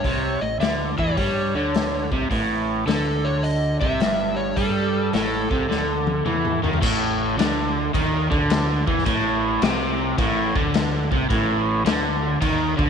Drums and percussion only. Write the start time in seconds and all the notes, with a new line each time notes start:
0.04 kick, open hi-hat
0.61 snare, open hi-hat
0.98 kick
1.17 kick, open hi-hat
1.74 snare, open hi-hat
2.12 kick
2.31 kick, open hi-hat
2.88 snare, open hi-hat
3.44 open hi-hat
3.82 kick
4.00 snare, open hi-hat
4.57 kick, open hi-hat
5.13 snare, open hi-hat
5.51 kick
5.71 snare
6.07 high tom
6.26 mid tom
6.45 mid tom
6.64 floor tom
6.73 floor tom
6.82 kick, crash
7.39 snare, crash
7.94 kick, crash
8.32 kick
8.50 snare, crash
8.88 kick
8.98 snare
9.06 kick, crash
9.62 snare, crash
10.18 kick, crash
10.56 kick
10.74 snare, crash
11.12 kick
11.30 kick, crash
11.86 snare, crash
12.42 kick, crash
12.79 kick